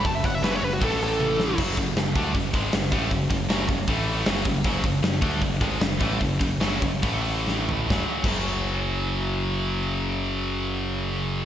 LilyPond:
<<
  \new Staff \with { instrumentName = "Lead electric guitar" } { \time 4/4 \key fis \minor \tempo 4 = 154 a''16 e''16 fis''16 e''16 b'16 cis''16 b'16 fis'16 a'8 a'4. | r1 | r1 | r1 |
r1 | r1 | r1 | }
  \new Staff \with { instrumentName = "Distorted electric guitar" } { \clef bass \time 4/4 \key fis \minor <fis, cis>8 <fis, cis>8 <fis, cis fis>8 <fis, cis>8 <a, e a>2 | <fis, cis fis>8 <fis, cis>8 <fis, cis>8 <d a d'>8 <fis, cis>8 <gis, dis gis>8 <fis, cis>8 <a, e a>8 | <fis, cis>8 <fis, cis>8 <fis, cis fis>8 <fis, cis>8 <a, e a>4 <fis, cis fis>8 <fis, cis>8 | <fis, cis fis>8 <fis, cis>8 <fis, cis>8 <d a d'>8 <fis, cis>8 <gis, dis gis>8 <fis, cis>8 <a, e a>8 |
<fis, cis>8 <fis, cis>8 <fis, cis fis>8 <fis, cis>8 <a, e a>2 | <fis, cis fis>16 r8 <fis, cis fis>2.~ <fis, cis fis>16~ | <fis, cis fis>1 | }
  \new Staff \with { instrumentName = "Picked electric bass" } { \clef bass \time 4/4 \key fis \minor fis,,8 fis,,8 fis,,8 fis,,8 a,,2 | fis,,8 fis,,8 fis,,8 d,8 fis,,8 gis,,8 fis,,8 a,,8 | fis,,8 fis,,8 fis,,8 fis,,8 a,,4 fis,,8 fis,,8 | fis,,8 fis,,8 fis,,8 d,8 fis,,8 gis,,8 fis,,8 a,,8 |
fis,,8 fis,,8 fis,,8 fis,,8 a,,2 | fis,,16 r8 fis,,2.~ fis,,16~ | fis,,1 | }
  \new DrumStaff \with { instrumentName = "Drums" } \drummode { \time 4/4 <hho bd>8 <hho bd>8 <hho sn>8 hho8 <hho bd>16 sn16 hho8 tommh8 sn8 | <cymc bd>8 <hho bd>8 <hho sn>8 <hho bd>8 <hho bd>8 <hho bd>8 <hho sn>8 <hho bd>8 | <hho bd>8 <hho bd>8 <hho sn>8 <hho bd>8 <hho bd>8 hho8 <hho sn>8 <hho bd>8 | <hho bd>8 <hho bd>8 <hho sn>8 <hho bd>8 <hho bd>16 sn16 <hho bd>8 <hho sn>8 <hho bd>8 |
<hho bd>8 <hho bd>8 <hho sn>8 <hho bd>8 <hho bd>8 hho8 sn8 tomfh8 | <bd sn>8. <cymc bd>16 r4 r4 r4 | r4 r4 r4 r4 | }
>>